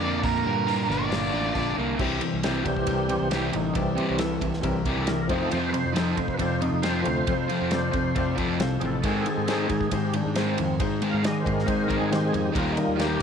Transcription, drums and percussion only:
0.24 kick, open hi-hat
0.68 open hi-hat
0.91 snare
1.12 snare, open hi-hat
1.55 kick, open hi-hat
1.99 kick, crash
2.21 ride
2.43 snare, ride
2.65 kick, ride
2.77 kick
2.87 kick, ride
3.09 ride
3.31 snare, ride
3.53 ride
3.75 kick, ride
3.98 ride
4.19 snare, ride
4.41 kick, ride
4.53 snare
4.63 kick, ride
4.85 kick, ride
5.07 snare, ride
5.29 kick, ride
5.51 ride
5.74 ride
5.96 snare, ride
6.17 kick, ride
6.28 kick
6.39 kick, ride
6.62 ride
6.83 snare, ride
7.05 ride
7.27 kick, ride
7.50 ride
7.71 snare, ride
7.93 kick, ride
8.16 kick, ride
8.38 kick, ride
8.60 snare, ride
8.81 ride
9.04 kick, ride
9.26 ride
9.48 snare, ride
9.70 kick, ride
9.81 kick
9.91 kick, ride
10.14 ride
10.36 snare, ride
10.58 ride
10.80 kick, ride
11.02 ride
11.24 snare, ride
11.46 kick, ride
11.59 snare
11.68 kick, ride
11.90 kick, ride
12.12 snare, ride
12.34 ride
12.55 kick, ride
12.77 ride
12.99 snare, ride

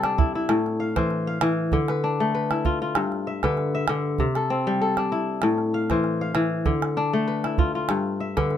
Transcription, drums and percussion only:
0.04 calabash click
0.19 calabash thump
0.49 calabash click
0.66 calabash click
0.96 calabash thump, calabash click
1.10 calabash click
1.41 calabash click
1.72 calabash thump
1.88 calabash click
2.51 calabash click
2.65 calabash thump
2.95 calabash click
3.12 calabash click
3.43 calabash thump, calabash click
3.57 calabash click
3.88 calabash click
4.18 calabash thump
4.35 calabash click
4.97 calabash click
5.42 calabash click
5.58 calabash click
5.90 calabash thump, calabash click
6.04 calabash click
6.35 calabash click
6.65 calabash thump
6.82 calabash click
6.97 calabash click
7.44 calabash click
7.58 calabash thump
7.89 calabash click
8.37 calabash thump, calabash click
8.51 calabash click

